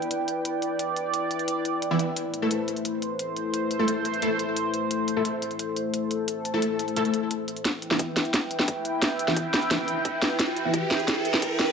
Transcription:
0.00 7.61 E4 medium
0.00 4.87 B4 medium
0.00 2.14 D5 medium
0.00 2.13 G5 medium
0.00 closed hi-hat soft
0.11 closed hi-hat medium
0.28 closed hi-hat medium
0.45 closed hi-hat medium
0.62 closed hi-hat medium
0.79 closed hi-hat medium
0.96 closed hi-hat medium
1.14 closed hi-hat medium
1.31 closed hi-hat medium
1.39 closed hi-hat soft
1.48 closed hi-hat medium
1.65 closed hi-hat medium
1.82 closed hi-hat medium
1.91 2.01 E3 medium
1.91 2.01 B3 medium
1.91 2.01 E4 medium
1.99 closed hi-hat medium
2.17 7.61 A3 medium
2.17 7.61 C5 medium
2.17 closed hi-hat medium
2.34 closed hi-hat medium
2.42 2.48 A3 medium
2.42 2.48 E4 medium
2.42 2.48 A4 medium
2.51 closed hi-hat medium
2.68 closed hi-hat medium
2.76 closed hi-hat soft
2.85 closed hi-hat medium
3.02 closed hi-hat medium
3.19 closed hi-hat medium
3.37 closed hi-hat medium
3.54 closed hi-hat medium
3.71 closed hi-hat medium
3.79 3.85 A3 medium
3.79 3.85 E4 medium
3.79 3.85 A4 medium
3.88 closed hi-hat medium
4.05 closed hi-hat medium
4.14 closed hi-hat soft
4.22 4.28 A3 medium
4.22 4.28 E4 medium
4.22 4.28 A4 medium
4.22 closed hi-hat medium
4.39 closed hi-hat medium
4.57 closed hi-hat medium
4.74 closed hi-hat medium
4.91 7.62 A4 medium
4.91 closed hi-hat loud
5.08 closed hi-hat medium
5.16 5.23 A3 medium
5.16 5.23 E4 medium
5.16 5.23 A4 medium
5.25 closed hi-hat medium
5.42 closed hi-hat medium
5.51 closed hi-hat soft
5.59 closed hi-hat loud
5.76 closed hi-hat medium
5.94 closed hi-hat medium
6.11 closed hi-hat medium
6.28 closed hi-hat loud
6.45 closed hi-hat medium
6.54 6.60 A3 medium
6.54 6.60 E4 medium
6.54 6.60 A4 medium
6.62 closed hi-hat medium
6.79 closed hi-hat medium
6.88 closed hi-hat soft
6.97 7.03 A3 medium
6.97 7.03 E4 medium
6.97 7.03 A4 medium
6.97 closed hi-hat medium
7.05 closed hi-hat soft
7.14 closed hi-hat medium
7.31 closed hi-hat loud
7.48 closed hi-hat medium
7.57 closed hi-hat soft
7.65 11.72 E4 medium
7.65 11.72 B4 medium
7.65 11.72 E5 medium
7.65 11.72 G5 medium
7.65 kick medium
7.65 snare medium
7.65 closed hi-hat loud
7.65 riser medium
7.82 closed hi-hat medium
7.91 7.97 E3 medium
7.91 7.97 B3 medium
7.91 7.97 E4 medium
7.91 snare soft
7.99 kick loud
7.99 closed hi-hat medium
8.17 snare soft
8.17 closed hi-hat medium
8.25 closed hi-hat soft
8.34 kick medium
8.34 snare medium
8.34 closed hi-hat loud
8.51 closed hi-hat medium
8.59 snare soft
8.68 kick loud
8.68 closed hi-hat loud
8.85 closed hi-hat medium
9.02 kick medium
9.02 snare medium
9.02 closed hi-hat loud
9.19 closed hi-hat medium
9.28 9.34 E3 medium
9.28 9.34 B3 medium
9.28 9.34 E4 medium
9.28 snare soft
9.36 kick loud
9.36 closed hi-hat medium
9.54 snare medium
9.54 closed hi-hat medium
9.62 closed hi-hat soft
9.71 9.77 E3 medium
9.71 9.77 B3 medium
9.71 9.77 E4 medium
9.71 kick loud
9.71 snare medium
9.71 closed hi-hat medium
9.88 closed hi-hat medium
10.05 kick loud
10.05 closed hi-hat medium
10.22 snare medium
10.22 closed hi-hat medium
10.39 kick loud
10.39 snare medium
10.39 closed hi-hat medium
10.57 closed hi-hat medium
10.65 10.71 E3 medium
10.65 10.71 B3 medium
10.65 10.71 E4 medium
10.74 kick loud
10.74 closed hi-hat medium
10.91 snare medium
10.91 closed hi-hat medium
10.99 closed hi-hat soft
11.08 kick loud
11.08 snare medium
11.08 closed hi-hat medium
11.25 closed hi-hat medium
11.34 snare medium
11.42 kick loud
11.42 closed hi-hat medium
11.59 snare medium
11.59 closed hi-hat medium

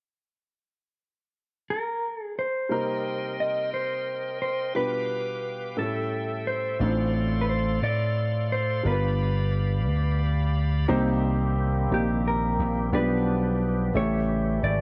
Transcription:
1.70 2.22 A#4 medium
2.22 2.38 G#4 medium
2.39 3.40 C5 medium
2.69 3.69 C3 soft
2.69 4.71 G3 medium
2.69 4.71 A#3 soft
2.69 4.72 C4 soft
2.69 4.72 D#4 soft
2.69 4.74 A#4 soft
2.69 4.72 A#4 medium
2.69 4.74 D#5 soft
2.69 4.74 G5 soft
2.69 4.74 C6 medium
3.40 3.71 D#5 medium
3.74 4.41 C5 medium
4.42 4.76 C5 medium
4.75 5.74 B2 soft
4.75 5.75 G3 soft
4.75 5.78 B3 soft
4.75 5.78 D4 soft
4.75 5.78 F4 soft
4.75 5.77 B4 soft
4.75 5.78 B4 medium
4.75 5.74 B4 medium
4.75 5.77 F5 soft
4.75 6.78 G5 soft
4.75 5.77 D6 medium
5.77 6.76 A2 soft
5.77 6.80 G3 soft
5.77 6.78 A3 soft
5.77 6.80 C#4 soft
5.77 6.80 E4 soft
5.77 6.80 A4 soft
5.77 8.82 A4 soft
5.77 6.49 A4 medium
5.77 6.80 E5 soft
6.47 7.11 C5 medium
6.79 7.78 A1 medium
6.79 7.79 A2 soft
6.79 8.80 A3 soft
6.79 8.81 C4 soft
6.79 8.81 D4 soft
6.79 6.87 D#4 soft
6.79 8.81 C5 medium
6.79 8.83 D5 soft
6.79 10.85 F5 soft
6.79 8.83 C6 medium
6.88 8.84 F4 soft
7.41 7.48 B4 soft
7.49 7.81 C5 medium
7.82 8.81 A2 medium
7.82 8.52 D5 medium
8.52 8.87 C5 medium
8.83 9.87 G1 medium
8.83 9.83 G2 soft
8.83 10.84 G3 soft
8.83 10.84 B3 soft
8.83 10.85 D4 soft
8.83 10.85 F4 soft
8.83 10.87 G4 soft
8.83 8.92 A#4 soft
8.83 10.87 D5 soft
8.83 10.87 B5 medium
8.87 10.18 B4 medium
8.92 10.89 B4 medium
9.87 10.85 D2 medium
10.88 11.87 C2 medium
10.88 11.86 C3 medium
10.88 12.91 D#3 soft
10.88 13.91 G3 soft
10.88 11.69 A#3 medium
10.88 12.91 A#3 soft
10.88 11.69 C4 medium
10.88 12.90 C4 soft
10.88 11.69 D#4 medium
10.88 11.69 G4 medium
10.88 12.90 G4 medium
10.88 11.69 C5 medium
11.91 12.55 A#1 medium
11.91 12.71 A#3 soft
11.91 12.71 C4 soft
11.91 12.71 D#4 soft
11.91 12.71 G4 soft
11.91 12.27 G4 medium
11.91 12.71 D#5 medium
12.28 12.94 A#4 medium
12.59 12.90 A#1 medium
12.92 13.90 B1 medium
12.92 13.90 B2 medium
12.92 13.94 F3 medium
12.92 12.99 G#3 soft
12.92 13.94 B3 soft
12.92 13.72 D4 medium
12.92 13.94 D4 medium
12.92 13.73 F4 medium
12.92 13.73 G4 medium
12.92 13.93 G4 medium
12.92 13.96 B4 medium
12.92 13.73 D5 medium
12.98 13.75 B3 medium
13.94 14.58 A1 medium
13.94 14.81 C#3 soft
13.94 14.81 E3 medium
13.94 14.81 G3 medium
13.94 14.81 A3 medium
13.94 14.81 A3 soft
13.94 14.74 C#4 soft
13.94 14.74 E4 soft
13.94 14.81 G4 medium
13.94 14.74 G4 soft
13.94 14.75 A4 soft
13.94 14.59 C#5 medium
13.94 14.75 E5 medium
14.63 14.81 G#1 medium
14.63 14.81 D5 medium

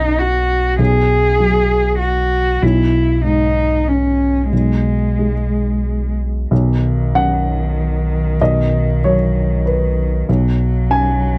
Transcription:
0.00 0.76 B1 medium
0.00 2.58 B1 medium
0.00 1.51 F#2 soft
0.00 0.20 D#4 medium
0.19 0.79 F#4 medium
0.78 2.58 B1 medium
0.78 1.98 G#4 medium
1.40 2.62 F#3 soft
1.99 2.64 F#4 medium
2.61 6.46 B1 medium
2.61 4.48 B1 medium
2.61 3.24 E4 medium
3.25 5.32 G#2 soft
3.25 3.89 D#4 medium
3.88 4.51 C#4 medium
4.52 6.47 B1 soft
4.52 6.15 G#3 medium
5.19 6.51 G#3 soft
6.51 10.23 B1 medium
6.51 8.36 B1 medium
6.51 10.31 D#3 medium
7.15 9.15 F#2 soft
7.15 8.36 F#5 medium
8.41 10.24 B1 medium
8.41 8.99 D#5 medium
9.04 10.29 F#3 soft
9.04 9.62 C#5 medium
9.66 10.24 B4 medium
10.29 11.38 B1 medium
10.29 11.38 F#3 medium
10.90 11.38 F#2 soft
10.90 11.38 G#5 medium

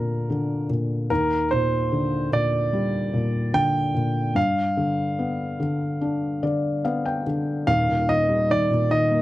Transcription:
0.00 1.07 D2 medium
0.00 0.70 A#2 soft
0.00 0.26 D3 soft
0.00 1.07 A#3 medium
0.00 0.66 A#4 medium
0.30 1.08 D3 medium
0.70 1.09 A#2 soft
1.10 4.33 D#2 medium
1.10 1.48 A#4 medium
1.51 2.30 A#2 medium
1.51 2.28 C5 medium
1.92 3.51 D3 soft
2.32 3.12 A#2 medium
2.32 3.59 D5 medium
2.73 4.33 G3 medium
3.13 3.93 A#2 medium
3.53 4.33 D3 medium
3.53 4.32 G5 loud
3.94 4.35 A#2 soft
4.35 7.63 G2 medium
4.35 7.22 F5 medium
4.77 5.58 D3 medium
5.19 6.80 B3 soft
5.60 6.41 D3 medium
6.01 7.64 D4 medium
6.43 7.25 D3 soft
6.43 6.82 D5 medium
6.85 7.65 B3 medium
6.85 7.04 F5 medium
7.05 7.64 G5 medium
7.27 7.67 D3 soft
7.67 9.22 D#1 medium
7.67 9.22 D#2 medium
7.67 8.10 F5 loud
7.88 8.69 A#2 soft
8.08 8.49 D#3 soft
8.08 8.51 D#5 medium
8.29 9.22 G3 soft
8.50 8.89 D#3 medium
8.50 8.89 D5 medium
8.70 9.22 A#2 soft
8.91 9.22 D#3 medium
8.91 9.22 D#5 medium
9.12 9.22 A#3 medium

